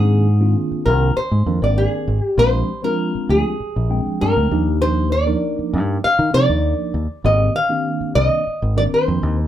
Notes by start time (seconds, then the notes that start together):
Already playing: G#2 D#3 A#3 C4 D4 G#4
0.40 D#3 A#3 C4 D4 F4
0.71 muted fingered electric bass stroke
0.86 C2 A#4
1.16 C5, muted fingered electric bass stroke
1.31 G#2
1.46 F2 D#3 A#3 C4 D4 A#4
1.62 G#1 D5
1.78 G#4
2.08 G#1
2.23 G4
2.37 A#1 F3 G#3 C4 D4 G4 C5
2.83 F3 G#3 C4 D4 F4 A#4
3.15 muted fingered electric bass stroke
3.29 D2 G#4
3.60 muted fingered electric bass stroke
3.76 A#1
3.90 F3 G#3 C4 D4 G5
4.07 muted fingered electric bass stroke
4.21 G2 A#4
4.37 D2
4.51 D#2 F3 A#3 D4 D#4 G4
4.82 C5
5.12 D5
5.26 F3 A#3 D4 D#4 A#4
5.59 muted fingered electric bass stroke
5.73 G2
6.04 F5, muted fingered electric bass stroke
6.19 D#3
6.33 C3 F3 A#3 D4 D#4 A#4 D5
6.49 D#2
6.94 D#2
7.24 G#1 D3 D#3 A#3 C4 G4 D#5
7.56 F5
7.69 D#3 A#3 C4 D4 G4
8.01 muted fingered electric bass stroke
8.15 C2 D#5
8.47 muted fingered electric bass stroke
8.62 G#1
8.76 D#3 A#3 C4 D4 A#4 D5
8.94 C5
9.08 F2
9.23 D#2